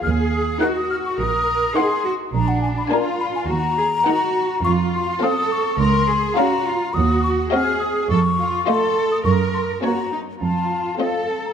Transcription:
<<
  \new Staff \with { instrumentName = "Flute" } { \time 4/4 \key bes \minor \tempo 4 = 104 f'''8 ees'''8 ges'''16 ees'''16 f'''16 des'''16 ees'''4 c'''8. r16 | bes''16 ges''16 aes''16 ces'''16 bes''8 ces'''16 aes''16 bes''2 | des'''8 c'''8 ees'''8 des'''8 c'''4 bes''4 | ees'''8 des'''8 f'''8 ees'''8 des'''4 c'''8. ees'''16 |
des'''8 c'''8 bes''8. r16 a''4 f''8 a''16 bes''16 | }
  \new Staff \with { instrumentName = "Violin section" } { \time 4/4 \key bes \minor r4 ges''4 r4 ges''4 | r4 aes''4 r4 ges''4 | r4 f''4 r4 f''4 | r4 ees''4 r4 ees''4 |
r4 des''4 r4 ees''4 | }
  \new Staff \with { instrumentName = "Violin section" } { \time 4/4 \key bes \minor r4 bes'4 r4 bes'4 | r4 bes'4 r4 bes'4 | r4 a'4 r4 f'4 | r4 ges'4 r4 f'4 |
r4 des'4 r4 f'4 | }
  \new Staff \with { instrumentName = "Cello section" } { \time 4/4 \key bes \minor aes'4 ges'4 bes'4 aes'8 ges'8 | d'4 f'4 ges'8 aes'8 ges'4 | f'4 a'4 bes'8 aes'8 ges'8 f'8 | ges'4 aes'4 a'8 f'8 a'4 |
bes'4 ges'8 ees'8 f'4 a'4 | }
  \new Staff \with { instrumentName = "Viola section" } { \time 4/4 \key bes \minor r4 ees'4 r4 ees'4 | r4 d'4 r4 ees'4 | r4 c'4 r4 des'4 | r4 c'4 r4 a4 |
r4 bes4 r4 c'4 | }
  \new Staff \with { instrumentName = "Double bass section" } { \clef bass \time 4/4 \key bes \minor ees,4 r4 bes,,4 r4 | bes,,4 r4 ees,4 r4 | f,4 r4 des,4 r4 | ees,4 r4 f,4 r4 |
ges,4 r4 f,4 r4 | }
>>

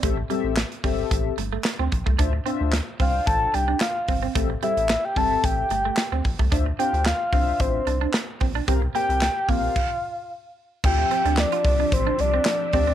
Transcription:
<<
  \new Staff \with { instrumentName = "Soft synth lead" } { \time 4/4 \key d \minor \tempo 4 = 111 r1 | r4. f''8 a''8 g''8 f''8. r16 | r8 e''8. g''16 a''8 g''4. r8 | r8 g''8 f''8 f''8 c''4 r4 |
r8 g''4 f''4. r4 | g''4 d''4 c''8 d''4 d''8 | }
  \new Staff \with { instrumentName = "Analog polysynth" } { \time 4/4 \key d \minor <c' g' a' e''>8 <c' g' a' e''>8 r8 <c' g' a' e''>4 r4. | <d' f' c'' e''>8 <d' f' c'' e''>8 r8 <d' f' c'' g''>4 r4. | <c' g' a' e''>8 <c' g' a' e''>8 r8 <c' g' a' e''>4 r4. | <d' f' c'' e''>8 <d' f' c'' f''>8 r8 <d' f' c'' e''>4 r4. |
<c' g' bes' f''>8 <c' g' bes' g''>8 r8 <c' g' bes' f''>8 r2 | <c' f' g' e''>4 r2 r8 <c' f' g' e''>8 | }
  \new Staff \with { instrumentName = "String machine" } { \time 4/4 \key d \minor r1 | r1 | r1 | r1 |
r1 | <f c' g' e''>1 | }
  \new Staff \with { instrumentName = "Clean electric guitar" } { \time 4/4 \key d \minor a16 r16 g16 r8. g16 r8. a16 a16 r16 c'16 r16 a16 | d'16 r16 c'16 r8. c'16 r8. d'16 d'16 r8 c'16 c'16 | a16 r16 g16 r8. g16 r8. a16 a16 r16 c'16 r16 a16 | d'16 r16 c'16 r8. c'16 r8. d'16 d'16 r8 c'16 d'16 |
c'16 r16 bes16 r8. bes16 r2 r16 | r8 c'16 d'16 r16 f'16 r16 d'16 r16 d'16 r16 c'16 r8 c'16 c'16 | }
  \new Staff \with { instrumentName = "Analog synth bass" } { \clef bass \time 4/4 \key d \minor a,,8 r16 a,,8 r16 g,,8 a,,8 g,,8 r16 d,16 bes,,16 c,16 | d,8 r16 d,8 r16 c,8 a,,8 c,8 r8 g,,8 | a,,8 r16 a,,8 r16 g,,8 a,,8 g,,8 r16 d,16 bes,,16 c,16 | d,8 r16 d,8 r16 c,8 a,,8 c,8 r8 bes,,8 |
c,8 r16 c,8 r16 bes,,8 r2 | d,8 r16 d,8 r16 c,8 a,,8 c,8 r8 d,8 | }
  \new DrumStaff \with { instrumentName = "Drums" } \drummode { \time 4/4 <hh bd>8 hh8 <hc hh sn>16 hh16 <hho bd>8 <hh bd>8 hh8 <hc hh sn>8 <hh bd>16 bd16 | <hh bd>8 hh8 <hc hh sn>8 <hho bd>8 <hh bd>8 hh8 <hc hh sn>8 <hho bd>8 | <hh bd>8 hh16 hh16 <hc hh sn>8 <hho bd>8 <hh bd>8 hh8 <hc hh sn>8 <hho bd>16 bd16 | <hh bd>8 hh16 hh16 <hc hh sn>8 <hho bd>8 <hh bd>8 hh8 <hc hh sn>8 <hho bd>8 |
<hh bd>8 hh16 hh16 <hc hh sn>8 <hho bd>8 <cymc bd>4 r4 | <cymc bd>8 hh16 hh16 <hc hh sn>16 hh16 <hho bd>8 <hh bd>8 hh8 <hc hh sn>8 <hho bd>8 | }
>>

